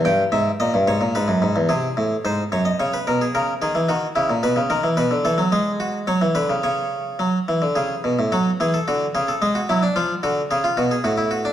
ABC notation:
X:1
M:3/4
L:1/16
Q:1/4=110
K:G#phr
V:1 name="Harpsichord"
=g2 e2 d2 c2 B4 | G4 ^B2 c d c =B ^A G | ^A2 G2 F2 E2 B2 A2 | [K:C#phr] B2 A2 G2 F2 c2 B2 |
c8 G4 | F2 G A F2 G A G F E D | ^E2 F2 G E F G F =E F D |]
V:2 name="Harpsichord" clef=bass
=G,,2 ^G,,2 ^A,, =G,, ^G,, A,, G,, F,, G,, E,, | ^B,,2 A,,2 G,,2 F,,2 C,2 =B,,2 | C,2 D, E, D,2 C, ^A,, B,, C, D, E, | [K:C#phr] B,, D, E, F, G,4 F, E, D, C, |
C,4 F,2 E, D, C,2 B,, A,, | F,2 E,2 D,2 C,2 G,2 F,2 | ^E,2 D,2 C,2 B,,2 A,,4 |]